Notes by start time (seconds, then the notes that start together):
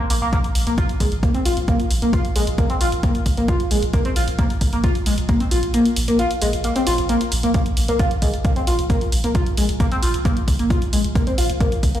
0.10 A#1 A#3, open hi-hat
0.22 A#1 A#3
0.33 A#3, kick, closed hi-hat
0.44 closed hi-hat
0.55 A#1, open hi-hat
0.67 A#1 A#3, closed hi-hat
0.78 F4, kick, closed hi-hat
0.89 closed hi-hat
1.00 A#1 G#3, kick, open hi-hat
1.12 A#1, closed hi-hat
1.23 A#3, kick, closed hi-hat
1.34 C4, closed hi-hat
1.45 A#1 F4, open hi-hat
1.57 A#1, closed hi-hat
1.68 A#3, kick, closed hi-hat
1.80 closed hi-hat
1.91 A#1, open hi-hat
2.02 A#1 A#3, closed hi-hat
2.13 F4, kick, closed hi-hat
2.25 closed hi-hat
2.36 A#1 G#3, open hi-hat
2.47 A#1, closed hi-hat
2.58 A#3, kick, closed hi-hat
2.70 C4, closed hi-hat
2.81 A#1 F4, open hi-hat
2.92 A#1, closed hi-hat
3.03 A#3, kick, closed hi-hat
3.15 closed hi-hat
3.26 A#1, kick, open hi-hat
3.37 A#1 A#3, closed hi-hat
3.48 F4, kick, closed hi-hat
3.60 closed hi-hat
3.71 A#1 G#3, open hi-hat
3.82 A#1, closed hi-hat
3.93 A#3, kick, closed hi-hat
4.05 C4, closed hi-hat
4.16 A#1 F4, open hi-hat
4.28 A#1, closed hi-hat
4.39 A#3, kick, closed hi-hat
4.50 closed hi-hat
4.61 A#1, kick, open hi-hat
4.73 A#1 A#3, closed hi-hat
4.84 F4, kick, closed hi-hat
4.95 closed hi-hat
5.06 A#1 G#3, open hi-hat
5.18 A#1, closed hi-hat
5.29 A#3, kick, closed hi-hat
5.40 C4, closed hi-hat
5.51 A#1 F4, open hi-hat
5.63 A#1, closed hi-hat
5.74 A#3, closed hi-hat
5.86 closed hi-hat
5.96 A#1, open hi-hat
6.08 A#1 A#3, closed hi-hat
6.19 F4, closed hi-hat
6.31 closed hi-hat
6.42 A#1 G#3, open hi-hat
6.53 A#1, closed hi-hat
6.64 A#3, closed hi-hat
6.76 C4, closed hi-hat
6.87 A#1 F4, open hi-hat
6.98 A#1, closed hi-hat
7.09 A#3, closed hi-hat
7.21 closed hi-hat
7.32 A#1, open hi-hat
7.43 A#1 A#3, closed hi-hat
7.54 A#3, kick, closed hi-hat
7.66 closed hi-hat
7.77 A#1, open hi-hat
7.88 A#1 A#3, closed hi-hat
7.99 F4, kick, closed hi-hat
8.11 closed hi-hat
8.22 A#1 G#3, kick, open hi-hat
8.34 A#1, closed hi-hat
8.45 A#3, kick, closed hi-hat
8.56 C4, closed hi-hat
8.67 A#1 F4, open hi-hat
8.79 A#1, closed hi-hat
8.90 A#3, kick, closed hi-hat
9.01 closed hi-hat
9.12 A#1, open hi-hat
9.24 A#1 A#3, closed hi-hat
9.35 F4, kick, closed hi-hat
9.46 closed hi-hat
9.57 A#1 G#3, open hi-hat
9.69 A#1, closed hi-hat
9.80 A#3, kick, closed hi-hat
9.92 C4, closed hi-hat
10.03 A#1 F4, open hi-hat
10.14 A#1, closed hi-hat
10.25 A#3, kick, closed hi-hat
10.37 closed hi-hat
10.48 A#1, kick, open hi-hat
10.59 A#1 A#3, closed hi-hat
10.70 F4, kick, closed hi-hat
10.82 closed hi-hat
10.93 A#1 G#3, open hi-hat
11.04 A#1, closed hi-hat
11.15 A#3, kick, closed hi-hat
11.27 C4, closed hi-hat
11.38 A#1 F4, open hi-hat
11.50 A#1, closed hi-hat
11.61 A#3, kick, closed hi-hat
11.72 closed hi-hat
11.83 A#1, kick, open hi-hat
11.95 A#1 A#3, closed hi-hat